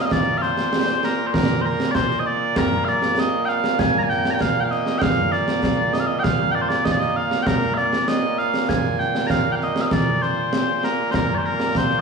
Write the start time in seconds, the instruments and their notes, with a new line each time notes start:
Already playing: bagpipes A#2 A#3
0.02 bagpipes D#5 F5
0.11 bagpipes D5, concert bass drum, snare
0.38 bagpipes F5
0.42 bagpipes C5, snare
0.57 snare
0.73 snare
1.03 bagpipes A#4, snare
1.27 bagpipes C5
1.34 bagpipes A#4, concert bass drum, snare
1.61 bagpipes C5
1.65 bagpipes A#4
1.80 snare
1.91 bagpipes C5 D5, concert bass drum, snare
2.11 snare
2.20 bagpipes D#5
2.26 bagpipes D5
2.56 bagpipes A#4, concert bass drum, snare
2.72 snare
2.85 bagpipes D5 F5, snare
3.02 snare
3.18 bagpipes D#5, snare
3.45 bagpipes F5 G5, snare
3.64 snare
3.79 bagpipes G#5, concert bass drum, snare
3.99 bagpipes A#5
4.03 bagpipes G#5
4.10 bagpipes G5, snare
4.25 snare
4.31 bagpipes G5 A#5
4.41 bagpipes F5, concert bass drum, snare
4.60 bagpipes F5 G5
4.71 bagpipes D#5, snare
4.86 snare
4.98 bagpipes F5 G5, concert bass drum, snare
5.32 bagpipes D5, snare
5.48 snare
5.63 concert bass drum, snare
5.93 bagpipes D#5, snare
6.00 bagpipes F5
6.07 bagpipes D#5
6.19 bagpipes G5
6.23 bagpipes F5, concert bass drum, snare
6.51 bagpipes D5 G5
6.62 bagpipes C5
6.69 bagpipes D5, snare
6.85 bagpipes D#5, concert bass drum, snare
6.92 bagpipes D5
6.99 bagpipes D#5, snare
7.16 bagpipes F5
7.31 snare
7.42 bagpipes G5
7.47 bagpipes A#4, concert bass drum, snare
7.62 snare
7.74 bagpipes D5 F5, snare
7.93 snare
8.08 bagpipes D#5, snare
8.38 bagpipes F5, snare
8.54 snare
8.69 bagpipes G#5, concert bass drum, snare
8.99 bagpipes G5, snare
9.15 snare
9.27 bagpipes F5 A#5, concert bass drum, snare
9.52 bagpipes F5 G5
9.61 bagpipes D#5, snare
9.76 snare
9.81 bagpipes F5
9.86 bagpipes D#5
9.91 bagpipes D5, concert bass drum, snare
10.22 bagpipes C5, snare
10.53 snare
10.83 bagpipes A#4, snare
11.11 bagpipes A#4 C5, concert bass drum, snare
11.34 bagpipes C5 D5
11.46 bagpipes A#4
11.60 snare
11.75 bagpipes C5, concert bass drum, snare
11.90 snare